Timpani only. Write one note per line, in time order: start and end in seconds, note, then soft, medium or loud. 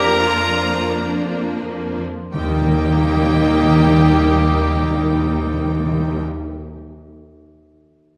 2.34 2.41 D#3 loud
2.41 2.47 D#3 medium
2.47 2.54 D#3 medium
2.55 2.61 D#3 medium
2.61 2.68 D#3 loud
2.68 2.75 D#3 loud
2.76 2.82 D#3 loud
2.82 2.89 D#3 medium
2.89 2.96 D#3 loud
2.96 3.02 D#3 loud
3.02 3.09 D#3 loud
3.09 3.15 D#3 medium
3.15 3.22 D#3 loud
3.22 3.28 D#3 loud
3.28 3.35 D#3 medium
3.35 3.42 D#3 loud
3.42 3.49 D#3 loud
3.50 3.56 D#3 medium
3.56 3.63 D#3 loud
3.63 3.70 D#3 loud
3.71 3.78 D#3 loud
3.79 3.85 D#3 loud
3.85 3.92 D#3 loud
3.92 3.99 D#3 loud
3.99 4.06 D#3 loud
4.06 4.13 D#3 medium
4.20 4.27 D#3 loud
4.27 4.34 D#3 loud
4.35 4.41 D#3 loud
4.41 4.48 D#3 loud
4.48 4.55 D#3 medium
4.55 4.62 D#3 loud
4.62 4.69 D#3 medium
4.69 4.75 D#3 loud
4.75 4.82 D#3 medium
4.82 4.89 D#3 loud
4.90 4.97 D#3 medium
4.97 5.04 D#3 loud
5.05 5.11 D#3 medium
5.11 5.18 D#3 loud
5.19 5.25 D#3 loud
5.25 5.32 D#3 loud
5.33 5.39 D#3 medium
5.39 5.46 D#3 loud
5.46 5.53 D#3 loud
5.53 5.59 D#3 loud
5.59 5.66 D#3 medium
5.66 5.72 D#3 loud
5.72 5.79 D#3 loud
5.79 5.86 D#3 loud
5.86 5.92 D#3 loud
5.92 5.99 D#3 loud
5.99 6.06 D#3 loud
6.06 6.13 D#3 loud
6.13 6.20 D#3 loud
6.20 6.27 D#3 loud